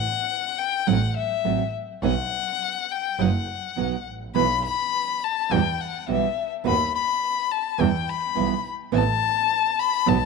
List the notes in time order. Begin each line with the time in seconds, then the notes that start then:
Already playing: F#5
0.58 G5
0.87 A1 F#3 A3 C4 F#4 F#5
1.17 E5
1.45 A1 F#3 A3 C4 F#4
2.03 B1 B2 F#3 B3 D#4 F#4 F#5
2.92 G5
3.18 F#1 B2 F#3 B3 D#4 F#4 F#5
3.76 B1 B2 F#3 B3 D#4 F#4
4.07 A1
4.35 B1 B2 E3 B3 E4 F#4 B4 B5
4.65 B5
5.24 A5
5.50 E2 B2 E3 G3 B3 F#4 G5
5.81 F#5
6.08 B1 B2 E3 G3 B3 F#4 E5
6.64 D#2 D#3 B3 D#4 F#4 B5
6.95 B5
7.52 A5
7.78 E2 B2 E3 G3 B3 E4 G5
8.09 B5
8.35 B1 B2 E3 G3 B3 E4
8.92 A1 E3 B3 C4 E4 A5
9.79 B5
10.06 B1 B2 F#3 B3 D#4 F#4 A5